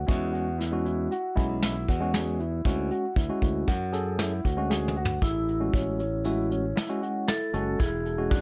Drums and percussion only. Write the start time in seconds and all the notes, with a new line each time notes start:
0.09 kick, closed hi-hat
0.35 closed hi-hat
0.61 snare, closed hi-hat
0.86 closed hi-hat
1.12 closed hi-hat
1.37 kick, closed hi-hat
1.63 snare, closed hi-hat
1.89 kick, closed hi-hat
2.14 snare, closed hi-hat
2.40 closed hi-hat
2.65 kick, closed hi-hat
2.91 closed hi-hat
3.16 kick, closed hi-hat
3.42 kick, closed hi-hat
3.68 kick, snare, closed hi-hat
3.93 snare, closed hi-hat
4.19 snare, closed hi-hat
4.45 kick, closed hi-hat
4.71 snare
4.88 mid tom
5.05 floor tom
5.22 kick, closed hi-hat, shaker
5.48 closed hi-hat
5.73 kick, closed hi-hat
5.99 closed hi-hat, shaker
6.24 closed hi-hat, shaker
6.51 closed hi-hat
6.77 snare, closed hi-hat
7.03 closed hi-hat
7.28 snare, closed hi-hat
7.54 closed hi-hat
7.79 kick, closed hi-hat, shaker
8.06 closed hi-hat
8.31 kick, closed hi-hat